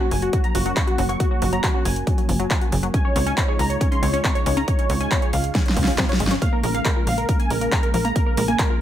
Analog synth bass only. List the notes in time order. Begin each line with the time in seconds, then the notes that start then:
0.11 F#1
0.55 F#1
0.98 F#1
1.42 F#1
1.85 F#1
2.29 F#1
2.72 F#1
3.16 C#2
3.59 C#2
4.03 C#2
4.46 C#2
4.90 C#2
5.33 C#2
5.77 C#2
6.20 G#1
6.63 A#1
7.07 A#1
7.51 A#1
7.94 A#1
8.38 A#1